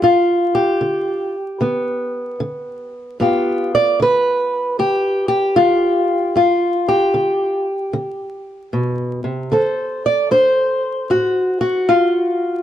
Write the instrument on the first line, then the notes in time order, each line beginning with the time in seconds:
steel-string acoustic guitar
0.02 G2 F4
0.55 G4
0.81 D3
1.61 D3 B3
2.40 D3
3.20 G2 B3 F4 G4
3.75 D5
4.00 D3 B4
4.79 D3 G4
5.28 G4
5.56 D3 F4
6.36 G2 F4
6.88 G4
7.14 D3
7.93 D3
8.73 B2
9.24 C3
9.52 D3 A4 C5
10.06 D5
10.31 D4 C5
11.10 A2 F#4
11.61 F#4
11.89 F4